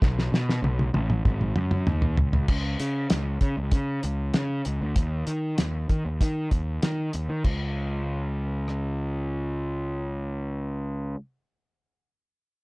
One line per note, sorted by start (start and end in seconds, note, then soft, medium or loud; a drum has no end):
0.02 0.28 B1 loud
0.02 kick loud
0.02 snare medium
0.19 snare medium
0.32 0.59 B2 medium
0.32 snare medium
0.49 snare medium
0.62 0.89 B1 loud
0.62 high tom medium
0.79 high tom medium
0.94 1.20 A1 loud
0.94 high tom medium
1.10 mid tom medium
1.25 1.52 G#1 loud
1.25 kick loud
1.25 mid tom loud
1.41 mid tom medium
1.56 1.84 F#2 medium
1.56 mid tom loud
1.71 mid tom medium
1.87 2.15 D#2 medium
1.87 mid tom loud
2.02 floor tom medium
2.17 2.46 C#2 medium
2.17 floor tom loud
2.33 floor tom loud
2.48 2.75 C#2 medium
2.48 kick loud
2.48 crash medium
2.80 3.06 C#3 medium
2.80 closed hi-hat medium
3.10 3.37 C#2 medium
3.10 snare loud
3.10 closed hi-hat medium
3.41 3.54 C#3 medium
3.41 kick medium
3.41 closed hi-hat medium
3.57 3.70 C#2 medium
3.72 3.99 C#3 medium
3.72 kick loud
3.72 closed hi-hat medium
4.03 4.30 C#2 medium
4.03 closed hi-hat medium
4.34 4.61 C#3 medium
4.34 snare loud
4.34 closed hi-hat medium
4.65 4.79 C#2 medium
4.65 closed hi-hat medium
4.81 4.94 D2 medium
4.96 5.23 D#2 loud
4.96 kick loud
4.96 closed hi-hat medium
5.27 5.54 D#3 medium
5.27 closed hi-hat medium
5.58 5.85 D#2 medium
5.58 snare loud
5.58 closed hi-hat medium
5.89 6.03 D#3 medium
5.89 kick medium
5.89 closed hi-hat medium
6.05 6.18 D#2 medium
6.21 6.47 D#3 medium
6.21 kick loud
6.21 closed hi-hat medium
6.51 6.78 D#2 medium
6.51 kick medium
6.51 closed hi-hat medium
6.83 7.09 D#3 medium
6.83 snare loud
6.83 closed hi-hat medium
7.13 7.27 D#2 medium
7.13 closed hi-hat medium
7.29 7.42 D#3 medium
7.44 11.15 C#2 medium
7.44 kick medium
7.44 crash medium
8.68 cross-stick soft